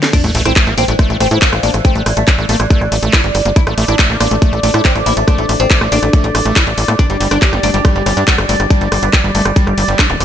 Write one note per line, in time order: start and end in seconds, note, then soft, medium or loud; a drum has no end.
0.03 snare medium
0.13 0.18 A3 medium
0.13 0.20 D4 loud
0.13 10.25 D5 medium
0.13 kick loud
0.13 cross-stick soft
0.13 closed hi-hat medium
0.13 crash loud
0.13 sub drop medium
0.24 0.31 A1 medium
0.24 0.30 E3 medium
0.24 0.31 A3 medium
0.24 closed hi-hat soft
0.35 0.42 A1 loud
0.35 0.41 E3 medium
0.35 0.42 A3 loud
0.35 open hi-hat loud
0.45 0.53 A1 medium
0.45 0.52 C4 loud
0.45 0.53 E4 medium
0.45 cross-stick medium
0.45 closed hi-hat medium
0.56 0.63 E3 medium
0.56 0.68 A3 medium
0.56 kick loud
0.56 clap loud
0.56 closed hi-hat medium
0.67 0.74 A1 medium
0.67 0.73 E3 medium
0.67 0.74 A#3 medium
0.67 cross-stick soft
0.78 0.85 A1 loud
0.78 0.85 A#3 medium
0.78 0.84 C4 medium
0.78 open hi-hat medium
0.88 0.96 A1 medium
0.88 0.95 E3 medium
0.88 0.93 A3 medium
0.88 closed hi-hat medium
0.99 1.05 E3 medium
0.99 1.09 A3 medium
0.99 kick loud
0.99 cross-stick medium
0.99 closed hi-hat medium
1.10 1.17 A1 medium
1.10 1.16 E3 medium
1.10 1.17 A3 medium
1.20 1.28 A1 loud
1.20 1.28 A3 loud
1.20 1.27 C4 medium
1.20 cross-stick soft
1.20 open hi-hat loud
1.31 1.38 A2 medium
1.31 1.38 E3 medium
1.31 1.38 E4 medium
1.31 closed hi-hat medium
1.42 1.48 A#3 medium
1.42 kick loud
1.42 clap loud
1.42 closed hi-hat medium
1.53 1.60 A1 medium
1.53 1.59 E3 medium
1.53 cross-stick medium
1.53 closed hi-hat soft
1.63 1.71 A1 loud
1.63 1.71 A#3 medium
1.63 1.70 D4 medium
1.63 open hi-hat medium
1.74 1.81 A1 medium
1.74 1.80 E3 medium
1.74 cross-stick soft
1.74 closed hi-hat medium
1.85 1.95 A3 medium
1.85 1.91 C4 medium
1.85 kick loud
1.85 closed hi-hat medium
1.95 2.03 A1 medium
1.95 2.02 E3 medium
1.95 2.03 A3 medium
1.95 closed hi-hat soft
2.06 2.13 A1 loud
2.06 2.13 E3 medium
2.06 cross-stick medium
2.06 open hi-hat loud
2.17 2.24 A1 medium
2.17 2.23 A3 loud
2.17 closed hi-hat medium
2.28 2.34 E3 medium
2.28 kick loud
2.28 cross-stick soft
2.28 clap loud
2.28 closed hi-hat medium
2.38 2.46 A1 medium
2.38 2.45 E3 medium
2.38 2.46 A3 medium
2.49 2.56 A1 loud
2.49 2.55 A3 loud
2.49 2.56 A#3 medium
2.49 open hi-hat loud
2.60 2.67 A1 loud
2.60 2.66 E3 medium
2.60 cross-stick medium
2.60 closed hi-hat medium
2.70 2.77 E3 medium
2.70 2.81 A3 medium
2.70 kick loud
2.70 closed hi-hat medium
2.81 2.88 A1 medium
2.81 2.88 E3 medium
2.81 cross-stick soft
2.92 2.99 A1 loud
2.92 2.96 A3 loud
2.92 open hi-hat loud
3.03 3.10 A1 loud
3.03 3.13 A3 medium
3.03 closed hi-hat medium
3.13 3.21 E4 loud
3.13 kick loud
3.13 cross-stick medium
3.13 clap loud
3.13 closed hi-hat medium
3.24 3.31 G1 medium
3.24 closed hi-hat soft
3.35 3.42 G1 loud
3.35 cross-stick soft
3.35 open hi-hat loud
3.45 3.53 G1 medium
3.45 3.50 A#3 medium
3.45 closed hi-hat medium
3.56 3.61 A3 medium
3.56 3.63 E4 loud
3.56 kick loud
3.56 closed hi-hat medium
3.67 3.74 A1 medium
3.67 3.73 A3 medium
3.67 3.74 A3 medium
3.67 cross-stick medium
3.67 closed hi-hat soft
3.78 3.85 A1 loud
3.78 3.84 A3 medium
3.78 3.85 A3 loud
3.78 open hi-hat loud
3.88 3.96 A1 medium
3.88 3.95 D4 loud
3.88 3.96 E4 medium
3.88 cross-stick soft
3.88 closed hi-hat medium
3.99 4.11 A3 medium
3.99 kick loud
3.99 clap loud
3.99 closed hi-hat medium
4.10 4.17 A1 medium
4.10 4.16 A3 medium
4.10 4.17 A#3 medium
4.20 4.28 A1 loud
4.20 4.28 A#3 medium
4.20 4.27 D4 loud
4.20 cross-stick medium
4.20 open hi-hat loud
4.31 4.38 A1 medium
4.31 4.38 A3 medium
4.31 4.36 A3 medium
4.31 closed hi-hat medium
4.42 4.48 A3 medium
4.42 4.52 A3 medium
4.42 kick loud
4.42 cross-stick soft
4.42 closed hi-hat medium
4.53 4.60 A1 medium
4.53 4.60 A3 medium
4.53 4.59 A3 medium
4.63 4.71 A1 loud
4.63 4.71 A3 loud
4.63 4.70 D4 medium
4.63 open hi-hat loud
4.74 4.81 A2 medium
4.74 4.80 A3 medium
4.74 4.81 E4 medium
4.74 cross-stick medium
4.74 closed hi-hat medium
4.85 4.91 C4 medium
4.85 kick loud
4.85 clap loud
4.85 closed hi-hat medium
4.95 5.03 A1 medium
4.95 5.02 A3 medium
4.95 cross-stick soft
4.95 closed hi-hat soft
5.06 5.13 A1 loud
5.06 5.13 A#3 medium
5.06 5.13 E4 medium
5.06 open hi-hat loud
5.17 5.24 A1 medium
5.17 5.23 A3 medium
5.17 closed hi-hat medium
5.28 5.38 A3 medium
5.28 5.34 D4 loud
5.28 kick loud
5.28 cross-stick medium
5.28 closed hi-hat medium
5.38 5.46 A1 medium
5.38 5.46 A3 medium
5.38 5.45 A3 medium
5.38 closed hi-hat soft
5.49 5.56 A1 loud
5.49 5.55 A3 medium
5.49 cross-stick soft
5.49 open hi-hat loud
5.60 5.67 A1 medium
5.60 5.66 C4 loud
5.60 closed hi-hat soft
5.70 5.77 A3 medium
5.70 kick loud
5.70 clap loud
5.70 closed hi-hat medium
5.81 5.88 A1 medium
5.81 5.88 A3 medium
5.81 cross-stick medium
5.92 5.99 A1 loud
5.92 5.99 A#3 medium
5.92 5.98 D4 medium
5.92 open hi-hat loud
6.03 6.10 A1 medium
6.03 6.09 A3 medium
6.03 cross-stick soft
6.03 closed hi-hat medium
6.13 6.20 A3 medium
6.13 6.24 A3 medium
6.13 kick loud
6.13 closed hi-hat medium
6.24 6.31 A1 medium
6.24 6.30 A3 medium
6.24 closed hi-hat soft
6.35 6.42 A1 loud
6.35 6.39 A3 loud
6.35 cross-stick medium
6.35 open hi-hat loud
6.45 6.53 A1 medium
6.45 6.56 A3 medium
6.45 closed hi-hat soft
6.56 6.63 E4 loud
6.56 kick loud
6.56 cross-stick soft
6.56 clap loud
6.56 closed hi-hat medium
6.67 6.74 A1 medium
6.67 closed hi-hat soft
6.78 6.85 A1 loud
6.78 open hi-hat loud
6.88 6.96 A2 medium
6.88 6.93 A#3 medium
6.88 cross-stick medium
6.88 closed hi-hat soft
6.99 7.03 G3 medium
6.99 7.05 D4 loud
6.99 kick loud
6.99 cross-stick soft
6.99 closed hi-hat medium
7.10 7.17 G1 medium
7.10 7.17 G3 medium
7.10 7.16 G3 medium
7.10 closed hi-hat soft
7.20 7.28 G1 loud
7.20 7.28 G3 loud
7.20 7.27 G3 medium
7.20 open hi-hat loud
7.31 7.38 G1 medium
7.31 7.38 D4 medium
7.31 7.38 D4 loud
7.31 cross-stick medium
7.31 closed hi-hat soft
7.42 7.48 G3 medium
7.42 7.54 G4 medium
7.42 kick loud
7.42 clap loud
7.42 closed hi-hat medium
7.53 7.60 G1 medium
7.53 7.59 G3 medium
7.53 7.60 A3 medium
7.53 cross-stick soft
7.63 7.71 G1 loud
7.63 7.71 A3 medium
7.63 7.70 D4 loud
7.63 open hi-hat medium
7.74 7.81 G1 medium
7.74 7.78 G3 medium
7.74 7.80 G3 medium
7.74 closed hi-hat medium
7.85 7.95 G3 medium
7.85 7.91 G3 medium
7.85 kick loud
7.85 cross-stick medium
7.85 closed hi-hat medium
7.95 8.03 G1 medium
7.95 8.03 G3 medium
7.95 8.02 G3 medium
8.06 8.13 G1 loud
8.06 8.13 G3 loud
8.06 8.13 C#4 medium
8.06 cross-stick soft
8.06 open hi-hat loud
8.17 8.24 G2 medium
8.17 8.23 G3 medium
8.17 8.24 D4 medium
8.17 closed hi-hat medium
8.28 8.34 B3 medium
8.28 kick loud
8.28 clap loud
8.28 closed hi-hat medium
8.38 8.46 G1 medium
8.38 8.45 G3 medium
8.38 cross-stick medium
8.38 closed hi-hat soft
8.49 8.56 G1 loud
8.49 8.56 A3 medium
8.49 8.56 D4 medium
8.49 open hi-hat loud
8.60 8.67 G1 medium
8.60 8.66 G3 medium
8.60 cross-stick soft
8.60 closed hi-hat medium
8.70 8.81 G3 medium
8.70 8.77 D4 medium
8.70 kick loud
8.70 closed hi-hat medium
8.81 8.88 G1 medium
8.81 8.88 G3 medium
8.81 closed hi-hat soft
8.92 8.99 G1 loud
8.92 8.98 G3 medium
8.92 cross-stick medium
8.92 open hi-hat loud
9.03 9.10 G1 medium
9.03 9.09 B3 loud
9.03 closed hi-hat medium
9.13 9.20 G3 medium
9.13 kick loud
9.13 cross-stick soft
9.13 clap loud
9.13 closed hi-hat medium
9.24 9.31 G1 medium
9.24 9.31 G3 medium
9.24 9.30 G3 medium
9.35 9.42 G1 loud
9.35 9.42 A3 medium
9.35 9.41 A3 loud
9.35 open hi-hat medium
9.45 9.53 G1 medium
9.45 9.52 G3 medium
9.45 cross-stick medium
9.45 closed hi-hat medium
9.56 9.66 G3 medium
9.56 9.63 G3 medium
9.56 kick loud
9.56 closed hi-hat medium
9.67 9.74 G1 medium
9.67 9.73 G3 medium
9.67 cross-stick soft
9.78 9.85 G1 loud
9.78 9.82 G3 loud
9.78 open hi-hat loud
9.88 9.96 G1 medium
9.88 9.99 G3 medium
9.88 closed hi-hat medium
9.99 10.06 D4 loud
9.99 kick loud
9.99 cross-stick medium
9.99 clap loud
9.99 closed hi-hat medium
10.10 10.17 D1 medium
10.10 closed hi-hat soft
10.10 zap medium
10.20 10.25 D1 loud
10.20 cross-stick soft
10.20 open hi-hat medium